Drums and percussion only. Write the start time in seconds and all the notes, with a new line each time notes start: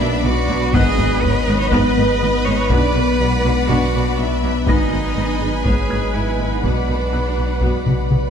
0.73 taiko
0.98 taiko low
1.23 taiko low
1.72 taiko
2.70 taiko
3.69 taiko
4.67 taiko
5.65 taiko
6.63 taiko
7.62 taiko
7.86 taiko mid
8.11 taiko mid